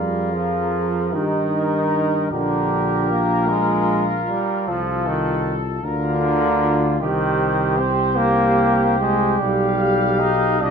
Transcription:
0, 0, Header, 1, 6, 480
1, 0, Start_track
1, 0, Tempo, 797872
1, 1395, Time_signature, 6, 3, 24, 8
1, 1395, Tempo, 782269
1, 4755, Tempo, 801068
1, 6499, End_track
2, 0, Start_track
2, 0, Title_t, "Trumpet section"
2, 0, Program_c, 0, 61
2, 0, Note_on_c, 0, 70, 42
2, 665, Note_off_c, 0, 70, 0
2, 685, Note_on_c, 0, 70, 47
2, 1383, Note_off_c, 0, 70, 0
2, 1396, Note_on_c, 0, 70, 49
2, 2814, Note_off_c, 0, 70, 0
2, 2830, Note_on_c, 0, 69, 48
2, 3543, Note_off_c, 0, 69, 0
2, 3551, Note_on_c, 0, 70, 52
2, 4166, Note_off_c, 0, 70, 0
2, 4270, Note_on_c, 0, 72, 55
2, 5694, Note_off_c, 0, 72, 0
2, 5724, Note_on_c, 0, 77, 58
2, 6423, Note_off_c, 0, 77, 0
2, 6433, Note_on_c, 0, 75, 65
2, 6499, Note_off_c, 0, 75, 0
2, 6499, End_track
3, 0, Start_track
3, 0, Title_t, "Euphonium"
3, 0, Program_c, 1, 58
3, 0, Note_on_c, 1, 68, 41
3, 681, Note_on_c, 1, 67, 45
3, 690, Note_off_c, 1, 68, 0
3, 1391, Note_off_c, 1, 67, 0
3, 1394, Note_on_c, 1, 65, 49
3, 2650, Note_off_c, 1, 65, 0
3, 2841, Note_on_c, 1, 65, 49
3, 3524, Note_off_c, 1, 65, 0
3, 3553, Note_on_c, 1, 65, 50
3, 4274, Note_on_c, 1, 67, 50
3, 4283, Note_off_c, 1, 65, 0
3, 5720, Note_off_c, 1, 67, 0
3, 5725, Note_on_c, 1, 67, 59
3, 6424, Note_off_c, 1, 67, 0
3, 6437, Note_on_c, 1, 67, 61
3, 6499, Note_off_c, 1, 67, 0
3, 6499, End_track
4, 0, Start_track
4, 0, Title_t, "Flugelhorn"
4, 0, Program_c, 2, 56
4, 0, Note_on_c, 2, 65, 58
4, 684, Note_on_c, 2, 63, 50
4, 693, Note_off_c, 2, 65, 0
4, 1390, Note_off_c, 2, 63, 0
4, 1394, Note_on_c, 2, 67, 65
4, 2114, Note_on_c, 2, 65, 53
4, 2124, Note_off_c, 2, 67, 0
4, 3384, Note_off_c, 2, 65, 0
4, 3544, Note_on_c, 2, 65, 57
4, 4245, Note_off_c, 2, 65, 0
4, 4270, Note_on_c, 2, 67, 65
4, 6411, Note_off_c, 2, 67, 0
4, 6444, Note_on_c, 2, 65, 69
4, 6499, Note_off_c, 2, 65, 0
4, 6499, End_track
5, 0, Start_track
5, 0, Title_t, "Trombone"
5, 0, Program_c, 3, 57
5, 0, Note_on_c, 3, 55, 52
5, 200, Note_on_c, 3, 53, 63
5, 209, Note_off_c, 3, 55, 0
5, 677, Note_on_c, 3, 51, 66
5, 686, Note_off_c, 3, 53, 0
5, 1387, Note_off_c, 3, 51, 0
5, 1391, Note_on_c, 3, 50, 63
5, 1872, Note_on_c, 3, 58, 59
5, 1881, Note_off_c, 3, 50, 0
5, 2111, Note_on_c, 3, 56, 72
5, 2120, Note_off_c, 3, 58, 0
5, 2494, Note_off_c, 3, 56, 0
5, 2598, Note_on_c, 3, 55, 58
5, 2846, Note_on_c, 3, 53, 64
5, 2855, Note_off_c, 3, 55, 0
5, 3082, Note_on_c, 3, 51, 58
5, 3091, Note_off_c, 3, 53, 0
5, 3387, Note_off_c, 3, 51, 0
5, 3551, Note_on_c, 3, 50, 75
5, 4248, Note_off_c, 3, 50, 0
5, 4267, Note_on_c, 3, 51, 72
5, 4751, Note_on_c, 3, 60, 70
5, 4760, Note_off_c, 3, 51, 0
5, 4980, Note_on_c, 3, 58, 74
5, 4989, Note_off_c, 3, 60, 0
5, 5468, Note_off_c, 3, 58, 0
5, 5471, Note_on_c, 3, 56, 71
5, 5717, Note_on_c, 3, 55, 70
5, 5726, Note_off_c, 3, 56, 0
5, 6197, Note_on_c, 3, 63, 82
5, 6206, Note_off_c, 3, 55, 0
5, 6442, Note_on_c, 3, 62, 75
5, 6451, Note_off_c, 3, 63, 0
5, 6499, Note_off_c, 3, 62, 0
5, 6499, End_track
6, 0, Start_track
6, 0, Title_t, "Tuba"
6, 0, Program_c, 4, 58
6, 0, Note_on_c, 4, 41, 43
6, 679, Note_on_c, 4, 43, 47
6, 688, Note_off_c, 4, 41, 0
6, 1395, Note_on_c, 4, 34, 50
6, 1404, Note_off_c, 4, 43, 0
6, 2675, Note_off_c, 4, 34, 0
6, 2842, Note_on_c, 4, 36, 50
6, 3524, Note_off_c, 4, 36, 0
6, 3549, Note_on_c, 4, 38, 52
6, 4274, Note_on_c, 4, 36, 58
6, 4284, Note_off_c, 4, 38, 0
6, 5718, Note_off_c, 4, 36, 0
6, 5722, Note_on_c, 4, 35, 61
6, 6436, Note_on_c, 4, 36, 58
6, 6445, Note_off_c, 4, 35, 0
6, 6499, Note_off_c, 4, 36, 0
6, 6499, End_track
0, 0, End_of_file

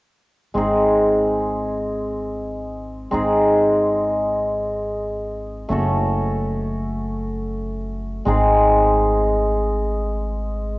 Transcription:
0, 0, Header, 1, 3, 480
1, 0, Start_track
1, 0, Tempo, 500000
1, 10356, End_track
2, 0, Start_track
2, 0, Title_t, "Hammered dulcimer"
2, 0, Program_c, 0, 15
2, 518, Note_on_c, 0, 56, 45
2, 530, Note_on_c, 0, 60, 45
2, 547, Note_on_c, 0, 63, 36
2, 551, Note_on_c, 0, 68, 45
2, 2976, Note_off_c, 0, 56, 0
2, 2984, Note_off_c, 0, 60, 0
2, 2987, Note_on_c, 0, 56, 44
2, 2988, Note_on_c, 0, 60, 44
2, 2996, Note_off_c, 0, 63, 0
2, 3000, Note_on_c, 0, 63, 43
2, 3011, Note_off_c, 0, 68, 0
2, 3015, Note_on_c, 0, 68, 47
2, 5460, Note_on_c, 0, 57, 50
2, 5472, Note_on_c, 0, 61, 37
2, 5484, Note_on_c, 0, 66, 45
2, 5494, Note_on_c, 0, 69, 52
2, 5518, Note_off_c, 0, 68, 0
2, 5520, Note_off_c, 0, 56, 0
2, 5530, Note_off_c, 0, 60, 0
2, 6461, Note_off_c, 0, 63, 0
2, 7923, Note_on_c, 0, 56, 50
2, 7935, Note_on_c, 0, 60, 47
2, 7939, Note_on_c, 0, 63, 39
2, 7949, Note_on_c, 0, 68, 54
2, 7981, Note_off_c, 0, 57, 0
2, 7981, Note_off_c, 0, 69, 0
2, 7992, Note_off_c, 0, 61, 0
2, 8603, Note_off_c, 0, 66, 0
2, 10356, Note_off_c, 0, 56, 0
2, 10356, Note_off_c, 0, 60, 0
2, 10356, Note_off_c, 0, 63, 0
2, 10356, Note_off_c, 0, 68, 0
2, 10356, End_track
3, 0, Start_track
3, 0, Title_t, "Upright bass"
3, 0, Program_c, 1, 32
3, 526, Note_on_c, 1, 32, 52
3, 2962, Note_off_c, 1, 32, 0
3, 3000, Note_on_c, 1, 32, 54
3, 5432, Note_off_c, 1, 32, 0
3, 5472, Note_on_c, 1, 30, 64
3, 7901, Note_off_c, 1, 30, 0
3, 7933, Note_on_c, 1, 32, 72
3, 10356, Note_off_c, 1, 32, 0
3, 10356, End_track
0, 0, End_of_file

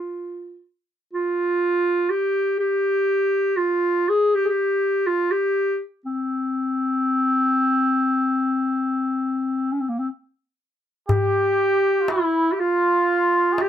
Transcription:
0, 0, Header, 1, 4, 480
1, 0, Start_track
1, 0, Tempo, 500000
1, 13140, End_track
2, 0, Start_track
2, 0, Title_t, "Clarinet"
2, 0, Program_c, 0, 71
2, 0, Note_on_c, 0, 65, 73
2, 615, Note_off_c, 0, 65, 0
2, 1088, Note_on_c, 0, 65, 86
2, 2016, Note_on_c, 0, 67, 83
2, 2031, Note_off_c, 0, 65, 0
2, 2482, Note_off_c, 0, 67, 0
2, 2488, Note_on_c, 0, 67, 86
2, 3426, Note_on_c, 0, 65, 82
2, 3441, Note_off_c, 0, 67, 0
2, 3925, Note_on_c, 0, 68, 90
2, 3940, Note_off_c, 0, 65, 0
2, 4175, Note_on_c, 0, 67, 80
2, 4189, Note_off_c, 0, 68, 0
2, 4272, Note_on_c, 0, 68, 69
2, 4286, Note_off_c, 0, 67, 0
2, 4294, Note_on_c, 0, 67, 84
2, 4309, Note_off_c, 0, 68, 0
2, 4866, Note_on_c, 0, 65, 79
2, 4880, Note_off_c, 0, 67, 0
2, 5102, Note_on_c, 0, 67, 81
2, 5116, Note_off_c, 0, 65, 0
2, 5580, Note_off_c, 0, 67, 0
2, 5812, Note_on_c, 0, 60, 76
2, 9334, Note_on_c, 0, 61, 53
2, 9348, Note_off_c, 0, 60, 0
2, 9414, Note_on_c, 0, 60, 52
2, 9428, Note_off_c, 0, 61, 0
2, 9498, Note_on_c, 0, 58, 53
2, 9512, Note_off_c, 0, 60, 0
2, 9592, Note_on_c, 0, 60, 55
2, 9606, Note_off_c, 0, 58, 0
2, 9680, Note_off_c, 0, 60, 0
2, 10657, Note_on_c, 0, 67, 100
2, 11620, Note_on_c, 0, 64, 81
2, 11634, Note_off_c, 0, 67, 0
2, 12022, Note_on_c, 0, 67, 65
2, 12036, Note_off_c, 0, 64, 0
2, 12097, Note_on_c, 0, 65, 86
2, 12111, Note_off_c, 0, 67, 0
2, 13073, Note_on_c, 0, 67, 90
2, 13088, Note_off_c, 0, 65, 0
2, 13140, Note_off_c, 0, 67, 0
2, 13140, End_track
3, 0, Start_track
3, 0, Title_t, "Muted trumpet"
3, 0, Program_c, 1, 59
3, 10641, Note_on_c, 1, 67, 84
3, 11532, Note_on_c, 1, 65, 49
3, 11547, Note_off_c, 1, 67, 0
3, 11600, Note_on_c, 1, 64, 67
3, 11615, Note_off_c, 1, 65, 0
3, 12037, Note_off_c, 1, 64, 0
3, 12037, Note_on_c, 1, 64, 53
3, 12081, Note_on_c, 1, 65, 81
3, 12096, Note_off_c, 1, 64, 0
3, 12986, Note_on_c, 1, 68, 57
3, 13001, Note_off_c, 1, 65, 0
3, 13060, Note_on_c, 1, 67, 80
3, 13074, Note_off_c, 1, 68, 0
3, 13140, Note_off_c, 1, 67, 0
3, 13140, End_track
4, 0, Start_track
4, 0, Title_t, "Darbuka"
4, 10648, Note_on_c, 9, 64, 85
4, 10744, Note_off_c, 9, 64, 0
4, 11600, Note_on_c, 9, 63, 66
4, 11696, Note_off_c, 9, 63, 0
4, 13039, Note_on_c, 9, 63, 67
4, 13135, Note_off_c, 9, 63, 0
4, 13140, End_track
0, 0, End_of_file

